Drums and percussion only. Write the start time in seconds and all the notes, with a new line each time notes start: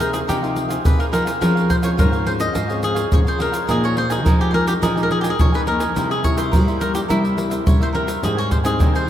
0.00 pandeiro, shaker
0.14 pandeiro, shaker
0.29 pandeiro, shaker, surdo
0.44 pandeiro, shaker
0.56 pandeiro, shaker
0.70 pandeiro, shaker
0.85 pandeiro, shaker, surdo
1.00 pandeiro, shaker
1.13 pandeiro, shaker
1.27 pandeiro, shaker
1.42 pandeiro, shaker, surdo
1.57 pandeiro, shaker
1.70 pandeiro, shaker, surdo
1.83 pandeiro, shaker
1.99 pandeiro, shaker, surdo
2.13 pandeiro, shaker
2.27 pandeiro
2.40 pandeiro, shaker
2.55 pandeiro, shaker, surdo
2.69 pandeiro, shaker
2.83 pandeiro, shaker
2.96 pandeiro, shaker
3.12 pandeiro, shaker, surdo
3.27 pandeiro, shaker
3.40 pandeiro
3.54 pandeiro, shaker
3.69 pandeiro, shaker, surdo
3.84 pandeiro, shaker
3.97 pandeiro
4.10 pandeiro, shaker
4.26 pandeiro, shaker, surdo
4.41 pandeiro, shaker
4.54 pandeiro
4.67 pandeiro, shaker
4.83 pandeiro, shaker, surdo
4.97 pandeiro, shaker
5.11 pandeiro
5.24 pandeiro, shaker
5.39 pandeiro, shaker, surdo
5.54 pandeiro, shaker
5.67 pandeiro
5.80 pandeiro, shaker
5.96 pandeiro, shaker, surdo
6.11 pandeiro, shaker
6.24 pandeiro, shaker, surdo
6.38 pandeiro, shaker
6.53 pandeiro, shaker, surdo
6.68 pandeiro, shaker
6.81 pandeiro, shaker
6.95 pandeiro, shaker
7.10 pandeiro, shaker, surdo
7.25 pandeiro, shaker
7.38 pandeiro, shaker
7.51 pandeiro, shaker
7.67 pandeiro, shaker, surdo
7.82 pandeiro, shaker
7.95 pandeiro
8.08 pandeiro, shaker
8.23 pandeiro, shaker, surdo
8.39 pandeiro, shaker
8.51 pandeiro, shaker, surdo
8.65 pandeiro, shaker
8.80 pandeiro, shaker, surdo
8.95 pandeiro, shaker